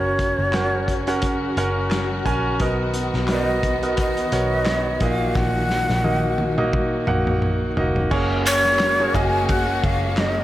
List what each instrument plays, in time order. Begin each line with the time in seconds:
Already playing: picked electric bass F#1, string section C#3 F#3 F#4, grand piano C#4 F#4 A#4 F#5, shakuhachi C#5
0.19 kick, closed hi-hat
0.39 picked electric bass F#1
0.53 grand piano C#4 F#4 A#4 F#5, snare, clap, closed hi-hat
0.88 kick, closed hi-hat
1.07 grand piano C#4 F#4 A#4 F#5, closed hi-hat
1.22 kick, closed hi-hat
1.57 picked electric bass F#1, grand piano C#4 F#4 A#4 F#5, closed hi-hat
1.91 snare, clap, closed hi-hat
2.25 picked electric bass A#1, grand piano C#4 F#4 A#4 G#5, kick, closed hi-hat
2.60 picked electric bass B1, grand piano B2 B3 F#4 A#4 D#5, string section D#3 B3, kick, closed hi-hat
2.94 closed hi-hat
3.13 picked electric bass B1, snare
3.28 grand piano B3 F#4 A#4 D#5, shakuhachi D#5, snare, clap, closed hi-hat
3.63 kick, closed hi-hat
3.83 grand piano B3 F#4 A#4 D#5, closed hi-hat
3.97 shakuhachi D#5, kick, closed hi-hat
4.17 closed hi-hat
4.32 picked electric bass B1, grand piano B3 F#4 A#4 C#5, closed hi-hat
4.66 snare, clap, closed hi-hat
5.00 picked electric bass A#1, grand piano A#2 A#3 D#4 F#4 D#5, string section F#3, shakuhachi F5, kick, closed hi-hat
5.35 picked electric bass A#1, shakuhachi F#5, kick, snare
5.70 snare
5.89 picked electric bass A#1, snare
6.04 grand piano A#3 D#4 F#4 D#5, high tom
6.38 high tom
6.58 grand piano A#3 D#4 F#4 D#5, mid tom
6.73 kick, mid tom
7.07 picked electric bass A#1, grand piano A#3 D#4 F#4 F#5, mid tom
7.27 mid tom
7.42 mid tom
7.77 picked electric bass F1, grand piano A#3 D#4 F#4 D#5, floor tom
7.96 floor tom
8.10 picked electric bass F#1, string section C#3 G#3 A#3 F#4, grand piano A#3 C#4 F#4 G#4 C#5, kick, crash
8.45 shakuhachi C#5, ride
8.65 snare
8.79 snare, clap, ride
9.00 grand piano A#3 C#4 F#4 G#4 C#5
9.14 picked electric bass F#1, grand piano A#3 C#4 F#4 G#4 D#5, shakuhachi G#5, kick, ride
9.49 shakuhachi F#5, kick, ride
9.84 picked electric bass F#1, shakuhachi F5, kick, ride
10.17 shakuhachi D#5, snare, clap, ride